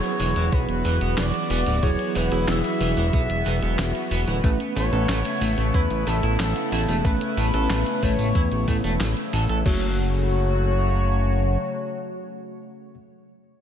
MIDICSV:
0, 0, Header, 1, 7, 480
1, 0, Start_track
1, 0, Key_signature, 3, "minor"
1, 0, Tempo, 652174
1, 1348, Time_signature, 4, 2, 24, 8
1, 10018, End_track
2, 0, Start_track
2, 0, Title_t, "Analog synth lead"
2, 0, Program_c, 0, 81
2, 0, Note_on_c, 0, 73, 114
2, 388, Note_on_c, 0, 71, 115
2, 399, Note_off_c, 0, 73, 0
2, 866, Note_on_c, 0, 74, 114
2, 877, Note_off_c, 0, 71, 0
2, 1341, Note_off_c, 0, 74, 0
2, 1346, Note_on_c, 0, 73, 116
2, 1588, Note_on_c, 0, 71, 104
2, 1599, Note_off_c, 0, 73, 0
2, 1829, Note_on_c, 0, 76, 123
2, 1840, Note_off_c, 0, 71, 0
2, 2302, Note_off_c, 0, 76, 0
2, 2306, Note_on_c, 0, 76, 117
2, 2997, Note_off_c, 0, 76, 0
2, 3508, Note_on_c, 0, 73, 126
2, 4229, Note_on_c, 0, 71, 110
2, 4240, Note_off_c, 0, 73, 0
2, 4469, Note_on_c, 0, 69, 100
2, 4480, Note_off_c, 0, 71, 0
2, 4704, Note_off_c, 0, 69, 0
2, 4708, Note_on_c, 0, 69, 101
2, 5187, Note_on_c, 0, 71, 114
2, 5198, Note_off_c, 0, 69, 0
2, 5908, Note_on_c, 0, 73, 107
2, 5919, Note_off_c, 0, 71, 0
2, 6628, Note_off_c, 0, 73, 0
2, 7108, Note_on_c, 0, 73, 106
2, 9523, Note_off_c, 0, 73, 0
2, 10018, End_track
3, 0, Start_track
3, 0, Title_t, "Tine electric piano"
3, 0, Program_c, 1, 4
3, 0, Note_on_c, 1, 54, 90
3, 0, Note_on_c, 1, 64, 83
3, 0, Note_on_c, 1, 68, 99
3, 1318, Note_off_c, 1, 54, 0
3, 1318, Note_off_c, 1, 64, 0
3, 1318, Note_off_c, 1, 68, 0
3, 1346, Note_on_c, 1, 64, 78
3, 1347, Note_on_c, 1, 54, 84
3, 1347, Note_on_c, 1, 68, 92
3, 1678, Note_off_c, 1, 54, 0
3, 1678, Note_off_c, 1, 64, 0
3, 1678, Note_off_c, 1, 68, 0
3, 1707, Note_on_c, 1, 54, 91
3, 1707, Note_on_c, 1, 64, 85
3, 1707, Note_on_c, 1, 68, 103
3, 3239, Note_off_c, 1, 54, 0
3, 3239, Note_off_c, 1, 64, 0
3, 3239, Note_off_c, 1, 68, 0
3, 3267, Note_on_c, 1, 57, 85
3, 3267, Note_on_c, 1, 61, 80
3, 3267, Note_on_c, 1, 71, 99
3, 3599, Note_off_c, 1, 57, 0
3, 3599, Note_off_c, 1, 61, 0
3, 3599, Note_off_c, 1, 71, 0
3, 3626, Note_on_c, 1, 71, 105
3, 3627, Note_on_c, 1, 57, 96
3, 3627, Note_on_c, 1, 61, 84
3, 5158, Note_off_c, 1, 57, 0
3, 5158, Note_off_c, 1, 61, 0
3, 5158, Note_off_c, 1, 71, 0
3, 5187, Note_on_c, 1, 57, 87
3, 5187, Note_on_c, 1, 61, 79
3, 5187, Note_on_c, 1, 71, 96
3, 5518, Note_off_c, 1, 57, 0
3, 5518, Note_off_c, 1, 61, 0
3, 5518, Note_off_c, 1, 71, 0
3, 5547, Note_on_c, 1, 57, 93
3, 5547, Note_on_c, 1, 61, 82
3, 5547, Note_on_c, 1, 71, 102
3, 7078, Note_off_c, 1, 57, 0
3, 7079, Note_off_c, 1, 61, 0
3, 7079, Note_off_c, 1, 71, 0
3, 7107, Note_on_c, 1, 66, 80
3, 7108, Note_on_c, 1, 57, 85
3, 7108, Note_on_c, 1, 73, 93
3, 9522, Note_off_c, 1, 66, 0
3, 9523, Note_off_c, 1, 57, 0
3, 9523, Note_off_c, 1, 73, 0
3, 10018, End_track
4, 0, Start_track
4, 0, Title_t, "Analog synth pad"
4, 0, Program_c, 2, 89
4, 0, Note_on_c, 2, 52, 83
4, 0, Note_on_c, 2, 59, 76
4, 0, Note_on_c, 2, 66, 95
4, 3239, Note_off_c, 2, 52, 0
4, 3239, Note_off_c, 2, 66, 0
4, 3266, Note_on_c, 2, 49, 82
4, 3267, Note_on_c, 2, 57, 78
4, 3267, Note_on_c, 2, 64, 95
4, 7077, Note_off_c, 2, 49, 0
4, 7077, Note_off_c, 2, 59, 0
4, 7078, Note_off_c, 2, 57, 0
4, 7078, Note_off_c, 2, 64, 0
4, 7108, Note_on_c, 2, 54, 77
4, 7108, Note_on_c, 2, 57, 77
4, 7108, Note_on_c, 2, 66, 94
4, 7109, Note_on_c, 2, 49, 86
4, 9523, Note_off_c, 2, 49, 0
4, 9523, Note_off_c, 2, 54, 0
4, 9523, Note_off_c, 2, 57, 0
4, 9523, Note_off_c, 2, 66, 0
4, 10018, End_track
5, 0, Start_track
5, 0, Title_t, "Clean electric guitar"
5, 0, Program_c, 3, 27
5, 146, Note_on_c, 3, 52, 102
5, 207, Note_off_c, 3, 52, 0
5, 267, Note_on_c, 3, 52, 105
5, 327, Note_off_c, 3, 52, 0
5, 387, Note_on_c, 3, 59, 78
5, 423, Note_off_c, 3, 59, 0
5, 628, Note_on_c, 3, 52, 102
5, 688, Note_off_c, 3, 52, 0
5, 747, Note_on_c, 3, 59, 77
5, 837, Note_off_c, 3, 59, 0
5, 867, Note_on_c, 3, 52, 103
5, 903, Note_off_c, 3, 52, 0
5, 1108, Note_on_c, 3, 59, 102
5, 1168, Note_off_c, 3, 59, 0
5, 1228, Note_on_c, 3, 52, 102
5, 1288, Note_off_c, 3, 52, 0
5, 1348, Note_on_c, 3, 52, 85
5, 1384, Note_off_c, 3, 52, 0
5, 1587, Note_on_c, 3, 52, 99
5, 1648, Note_off_c, 3, 52, 0
5, 1707, Note_on_c, 3, 64, 80
5, 1797, Note_off_c, 3, 64, 0
5, 1827, Note_on_c, 3, 52, 99
5, 1887, Note_off_c, 3, 52, 0
5, 2066, Note_on_c, 3, 52, 104
5, 2127, Note_off_c, 3, 52, 0
5, 2187, Note_on_c, 3, 52, 105
5, 2247, Note_off_c, 3, 52, 0
5, 2308, Note_on_c, 3, 59, 81
5, 2344, Note_off_c, 3, 59, 0
5, 2547, Note_on_c, 3, 52, 103
5, 2607, Note_off_c, 3, 52, 0
5, 2667, Note_on_c, 3, 59, 78
5, 2757, Note_off_c, 3, 59, 0
5, 2786, Note_on_c, 3, 52, 104
5, 2823, Note_off_c, 3, 52, 0
5, 3027, Note_on_c, 3, 59, 103
5, 3087, Note_off_c, 3, 59, 0
5, 3147, Note_on_c, 3, 52, 101
5, 3207, Note_off_c, 3, 52, 0
5, 3267, Note_on_c, 3, 57, 81
5, 3303, Note_off_c, 3, 57, 0
5, 3507, Note_on_c, 3, 57, 103
5, 3567, Note_off_c, 3, 57, 0
5, 3627, Note_on_c, 3, 69, 80
5, 3717, Note_off_c, 3, 69, 0
5, 3746, Note_on_c, 3, 57, 101
5, 3807, Note_off_c, 3, 57, 0
5, 3987, Note_on_c, 3, 57, 106
5, 4047, Note_off_c, 3, 57, 0
5, 4106, Note_on_c, 3, 57, 104
5, 4167, Note_off_c, 3, 57, 0
5, 4227, Note_on_c, 3, 64, 81
5, 4263, Note_off_c, 3, 64, 0
5, 4466, Note_on_c, 3, 57, 104
5, 4527, Note_off_c, 3, 57, 0
5, 4588, Note_on_c, 3, 64, 77
5, 4678, Note_off_c, 3, 64, 0
5, 4708, Note_on_c, 3, 57, 108
5, 4744, Note_off_c, 3, 57, 0
5, 4948, Note_on_c, 3, 64, 105
5, 5008, Note_off_c, 3, 64, 0
5, 5068, Note_on_c, 3, 57, 103
5, 5128, Note_off_c, 3, 57, 0
5, 5187, Note_on_c, 3, 57, 83
5, 5223, Note_off_c, 3, 57, 0
5, 5427, Note_on_c, 3, 57, 99
5, 5487, Note_off_c, 3, 57, 0
5, 5548, Note_on_c, 3, 69, 78
5, 5638, Note_off_c, 3, 69, 0
5, 5667, Note_on_c, 3, 57, 102
5, 5728, Note_off_c, 3, 57, 0
5, 5907, Note_on_c, 3, 57, 102
5, 5967, Note_off_c, 3, 57, 0
5, 6027, Note_on_c, 3, 57, 103
5, 6088, Note_off_c, 3, 57, 0
5, 6148, Note_on_c, 3, 64, 78
5, 6184, Note_off_c, 3, 64, 0
5, 6388, Note_on_c, 3, 57, 81
5, 6448, Note_off_c, 3, 57, 0
5, 6508, Note_on_c, 3, 57, 101
5, 6568, Note_off_c, 3, 57, 0
5, 6629, Note_on_c, 3, 57, 84
5, 6688, Note_off_c, 3, 57, 0
5, 6868, Note_on_c, 3, 69, 77
5, 6928, Note_off_c, 3, 69, 0
5, 6988, Note_on_c, 3, 69, 75
5, 7048, Note_off_c, 3, 69, 0
5, 7109, Note_on_c, 3, 54, 92
5, 7332, Note_off_c, 3, 54, 0
5, 10018, End_track
6, 0, Start_track
6, 0, Title_t, "Analog synth bass"
6, 0, Program_c, 4, 38
6, 146, Note_on_c, 4, 28, 96
6, 253, Note_off_c, 4, 28, 0
6, 268, Note_on_c, 4, 28, 84
6, 374, Note_off_c, 4, 28, 0
6, 388, Note_on_c, 4, 35, 104
6, 493, Note_off_c, 4, 35, 0
6, 507, Note_on_c, 4, 28, 76
6, 613, Note_off_c, 4, 28, 0
6, 627, Note_on_c, 4, 28, 95
6, 733, Note_off_c, 4, 28, 0
6, 747, Note_on_c, 4, 28, 86
6, 853, Note_off_c, 4, 28, 0
6, 867, Note_on_c, 4, 28, 104
6, 973, Note_off_c, 4, 28, 0
6, 1106, Note_on_c, 4, 28, 93
6, 1213, Note_off_c, 4, 28, 0
6, 1228, Note_on_c, 4, 26, 84
6, 1333, Note_off_c, 4, 26, 0
6, 1347, Note_on_c, 4, 28, 103
6, 1453, Note_off_c, 4, 28, 0
6, 1587, Note_on_c, 4, 28, 99
6, 1693, Note_off_c, 4, 28, 0
6, 1708, Note_on_c, 4, 28, 85
6, 1814, Note_off_c, 4, 28, 0
6, 1828, Note_on_c, 4, 28, 105
6, 1933, Note_off_c, 4, 28, 0
6, 2068, Note_on_c, 4, 28, 97
6, 2174, Note_off_c, 4, 28, 0
6, 2187, Note_on_c, 4, 28, 85
6, 2293, Note_off_c, 4, 28, 0
6, 2308, Note_on_c, 4, 35, 104
6, 2413, Note_off_c, 4, 35, 0
6, 2428, Note_on_c, 4, 28, 77
6, 2534, Note_off_c, 4, 28, 0
6, 2548, Note_on_c, 4, 28, 99
6, 2654, Note_off_c, 4, 28, 0
6, 2669, Note_on_c, 4, 28, 86
6, 2774, Note_off_c, 4, 28, 0
6, 2788, Note_on_c, 4, 28, 103
6, 2894, Note_off_c, 4, 28, 0
6, 3027, Note_on_c, 4, 28, 95
6, 3133, Note_off_c, 4, 28, 0
6, 3148, Note_on_c, 4, 26, 83
6, 3254, Note_off_c, 4, 26, 0
6, 3268, Note_on_c, 4, 33, 105
6, 3373, Note_off_c, 4, 33, 0
6, 3507, Note_on_c, 4, 33, 96
6, 3613, Note_off_c, 4, 33, 0
6, 3626, Note_on_c, 4, 33, 87
6, 3733, Note_off_c, 4, 33, 0
6, 3746, Note_on_c, 4, 33, 104
6, 3853, Note_off_c, 4, 33, 0
6, 3986, Note_on_c, 4, 33, 96
6, 4093, Note_off_c, 4, 33, 0
6, 4106, Note_on_c, 4, 33, 84
6, 4213, Note_off_c, 4, 33, 0
6, 4227, Note_on_c, 4, 40, 103
6, 4333, Note_off_c, 4, 40, 0
6, 4347, Note_on_c, 4, 33, 75
6, 4453, Note_off_c, 4, 33, 0
6, 4467, Note_on_c, 4, 33, 100
6, 4573, Note_off_c, 4, 33, 0
6, 4588, Note_on_c, 4, 33, 83
6, 4694, Note_off_c, 4, 33, 0
6, 4708, Note_on_c, 4, 33, 106
6, 4814, Note_off_c, 4, 33, 0
6, 4947, Note_on_c, 4, 33, 95
6, 5053, Note_off_c, 4, 33, 0
6, 5068, Note_on_c, 4, 28, 85
6, 5173, Note_off_c, 4, 28, 0
6, 5187, Note_on_c, 4, 33, 102
6, 5293, Note_off_c, 4, 33, 0
6, 5428, Note_on_c, 4, 33, 98
6, 5533, Note_off_c, 4, 33, 0
6, 5548, Note_on_c, 4, 33, 85
6, 5654, Note_off_c, 4, 33, 0
6, 5668, Note_on_c, 4, 33, 101
6, 5774, Note_off_c, 4, 33, 0
6, 5907, Note_on_c, 4, 33, 98
6, 6013, Note_off_c, 4, 33, 0
6, 6028, Note_on_c, 4, 33, 85
6, 6134, Note_off_c, 4, 33, 0
6, 6148, Note_on_c, 4, 40, 106
6, 6253, Note_off_c, 4, 40, 0
6, 6270, Note_on_c, 4, 33, 78
6, 6375, Note_off_c, 4, 33, 0
6, 6388, Note_on_c, 4, 33, 99
6, 6494, Note_off_c, 4, 33, 0
6, 6509, Note_on_c, 4, 28, 85
6, 6614, Note_off_c, 4, 28, 0
6, 6629, Note_on_c, 4, 33, 100
6, 6734, Note_off_c, 4, 33, 0
6, 6869, Note_on_c, 4, 33, 96
6, 6974, Note_off_c, 4, 33, 0
6, 6990, Note_on_c, 4, 33, 83
6, 7095, Note_off_c, 4, 33, 0
6, 7108, Note_on_c, 4, 30, 96
6, 8518, Note_off_c, 4, 30, 0
6, 10018, End_track
7, 0, Start_track
7, 0, Title_t, "Drums"
7, 27, Note_on_c, 9, 42, 39
7, 101, Note_off_c, 9, 42, 0
7, 146, Note_on_c, 9, 46, 81
7, 219, Note_off_c, 9, 46, 0
7, 266, Note_on_c, 9, 42, 39
7, 340, Note_off_c, 9, 42, 0
7, 386, Note_on_c, 9, 42, 64
7, 387, Note_on_c, 9, 36, 121
7, 459, Note_off_c, 9, 42, 0
7, 461, Note_off_c, 9, 36, 0
7, 505, Note_on_c, 9, 42, 38
7, 579, Note_off_c, 9, 42, 0
7, 625, Note_on_c, 9, 46, 79
7, 699, Note_off_c, 9, 46, 0
7, 745, Note_on_c, 9, 42, 39
7, 819, Note_off_c, 9, 42, 0
7, 865, Note_on_c, 9, 38, 124
7, 865, Note_on_c, 9, 39, 92
7, 865, Note_on_c, 9, 42, 64
7, 939, Note_off_c, 9, 38, 0
7, 939, Note_off_c, 9, 39, 0
7, 939, Note_off_c, 9, 42, 0
7, 985, Note_on_c, 9, 42, 37
7, 1059, Note_off_c, 9, 42, 0
7, 1105, Note_on_c, 9, 46, 84
7, 1179, Note_off_c, 9, 46, 0
7, 1226, Note_on_c, 9, 42, 39
7, 1299, Note_off_c, 9, 42, 0
7, 1345, Note_on_c, 9, 42, 65
7, 1347, Note_on_c, 9, 36, 120
7, 1419, Note_off_c, 9, 42, 0
7, 1421, Note_off_c, 9, 36, 0
7, 1465, Note_on_c, 9, 42, 40
7, 1539, Note_off_c, 9, 42, 0
7, 1585, Note_on_c, 9, 46, 83
7, 1659, Note_off_c, 9, 46, 0
7, 1706, Note_on_c, 9, 42, 39
7, 1779, Note_off_c, 9, 42, 0
7, 1826, Note_on_c, 9, 38, 111
7, 1826, Note_on_c, 9, 39, 95
7, 1826, Note_on_c, 9, 42, 63
7, 1900, Note_off_c, 9, 38, 0
7, 1900, Note_off_c, 9, 39, 0
7, 1900, Note_off_c, 9, 42, 0
7, 1946, Note_on_c, 9, 42, 39
7, 2019, Note_off_c, 9, 42, 0
7, 2065, Note_on_c, 9, 46, 83
7, 2139, Note_off_c, 9, 46, 0
7, 2186, Note_on_c, 9, 42, 39
7, 2260, Note_off_c, 9, 42, 0
7, 2306, Note_on_c, 9, 42, 65
7, 2307, Note_on_c, 9, 36, 120
7, 2380, Note_off_c, 9, 42, 0
7, 2381, Note_off_c, 9, 36, 0
7, 2428, Note_on_c, 9, 42, 39
7, 2501, Note_off_c, 9, 42, 0
7, 2547, Note_on_c, 9, 46, 79
7, 2620, Note_off_c, 9, 46, 0
7, 2668, Note_on_c, 9, 42, 39
7, 2742, Note_off_c, 9, 42, 0
7, 2788, Note_on_c, 9, 38, 114
7, 2788, Note_on_c, 9, 39, 96
7, 2788, Note_on_c, 9, 42, 62
7, 2861, Note_off_c, 9, 38, 0
7, 2861, Note_off_c, 9, 39, 0
7, 2861, Note_off_c, 9, 42, 0
7, 2908, Note_on_c, 9, 42, 39
7, 2981, Note_off_c, 9, 42, 0
7, 3028, Note_on_c, 9, 46, 83
7, 3101, Note_off_c, 9, 46, 0
7, 3148, Note_on_c, 9, 42, 38
7, 3221, Note_off_c, 9, 42, 0
7, 3267, Note_on_c, 9, 36, 116
7, 3267, Note_on_c, 9, 42, 65
7, 3341, Note_off_c, 9, 36, 0
7, 3341, Note_off_c, 9, 42, 0
7, 3386, Note_on_c, 9, 42, 40
7, 3460, Note_off_c, 9, 42, 0
7, 3507, Note_on_c, 9, 46, 82
7, 3581, Note_off_c, 9, 46, 0
7, 3627, Note_on_c, 9, 42, 40
7, 3700, Note_off_c, 9, 42, 0
7, 3746, Note_on_c, 9, 38, 116
7, 3746, Note_on_c, 9, 39, 97
7, 3746, Note_on_c, 9, 42, 66
7, 3820, Note_off_c, 9, 38, 0
7, 3820, Note_off_c, 9, 39, 0
7, 3820, Note_off_c, 9, 42, 0
7, 3866, Note_on_c, 9, 42, 40
7, 3940, Note_off_c, 9, 42, 0
7, 3986, Note_on_c, 9, 46, 83
7, 4059, Note_off_c, 9, 46, 0
7, 4106, Note_on_c, 9, 42, 39
7, 4180, Note_off_c, 9, 42, 0
7, 4226, Note_on_c, 9, 42, 67
7, 4227, Note_on_c, 9, 36, 112
7, 4300, Note_off_c, 9, 42, 0
7, 4301, Note_off_c, 9, 36, 0
7, 4346, Note_on_c, 9, 42, 40
7, 4419, Note_off_c, 9, 42, 0
7, 4466, Note_on_c, 9, 46, 83
7, 4540, Note_off_c, 9, 46, 0
7, 4587, Note_on_c, 9, 42, 40
7, 4661, Note_off_c, 9, 42, 0
7, 4708, Note_on_c, 9, 38, 115
7, 4708, Note_on_c, 9, 39, 98
7, 4708, Note_on_c, 9, 42, 64
7, 4782, Note_off_c, 9, 38, 0
7, 4782, Note_off_c, 9, 39, 0
7, 4782, Note_off_c, 9, 42, 0
7, 4828, Note_on_c, 9, 42, 40
7, 4902, Note_off_c, 9, 42, 0
7, 4949, Note_on_c, 9, 46, 84
7, 5022, Note_off_c, 9, 46, 0
7, 5069, Note_on_c, 9, 42, 40
7, 5142, Note_off_c, 9, 42, 0
7, 5187, Note_on_c, 9, 36, 122
7, 5189, Note_on_c, 9, 42, 69
7, 5261, Note_off_c, 9, 36, 0
7, 5262, Note_off_c, 9, 42, 0
7, 5308, Note_on_c, 9, 42, 42
7, 5382, Note_off_c, 9, 42, 0
7, 5428, Note_on_c, 9, 46, 80
7, 5501, Note_off_c, 9, 46, 0
7, 5548, Note_on_c, 9, 42, 41
7, 5622, Note_off_c, 9, 42, 0
7, 5668, Note_on_c, 9, 38, 112
7, 5668, Note_on_c, 9, 39, 103
7, 5668, Note_on_c, 9, 42, 67
7, 5742, Note_off_c, 9, 38, 0
7, 5742, Note_off_c, 9, 39, 0
7, 5742, Note_off_c, 9, 42, 0
7, 5788, Note_on_c, 9, 42, 43
7, 5862, Note_off_c, 9, 42, 0
7, 5908, Note_on_c, 9, 36, 60
7, 5908, Note_on_c, 9, 46, 81
7, 5981, Note_off_c, 9, 36, 0
7, 5981, Note_off_c, 9, 46, 0
7, 6027, Note_on_c, 9, 42, 42
7, 6100, Note_off_c, 9, 42, 0
7, 6147, Note_on_c, 9, 42, 69
7, 6148, Note_on_c, 9, 36, 118
7, 6221, Note_off_c, 9, 36, 0
7, 6221, Note_off_c, 9, 42, 0
7, 6267, Note_on_c, 9, 42, 40
7, 6341, Note_off_c, 9, 42, 0
7, 6387, Note_on_c, 9, 46, 82
7, 6388, Note_on_c, 9, 36, 62
7, 6460, Note_off_c, 9, 46, 0
7, 6461, Note_off_c, 9, 36, 0
7, 6507, Note_on_c, 9, 42, 41
7, 6581, Note_off_c, 9, 42, 0
7, 6627, Note_on_c, 9, 38, 117
7, 6627, Note_on_c, 9, 39, 100
7, 6627, Note_on_c, 9, 42, 67
7, 6701, Note_off_c, 9, 38, 0
7, 6701, Note_off_c, 9, 39, 0
7, 6701, Note_off_c, 9, 42, 0
7, 6748, Note_on_c, 9, 42, 41
7, 6822, Note_off_c, 9, 42, 0
7, 6868, Note_on_c, 9, 46, 83
7, 6942, Note_off_c, 9, 46, 0
7, 6988, Note_on_c, 9, 42, 41
7, 7062, Note_off_c, 9, 42, 0
7, 7108, Note_on_c, 9, 36, 117
7, 7108, Note_on_c, 9, 49, 87
7, 7182, Note_off_c, 9, 36, 0
7, 7182, Note_off_c, 9, 49, 0
7, 10018, End_track
0, 0, End_of_file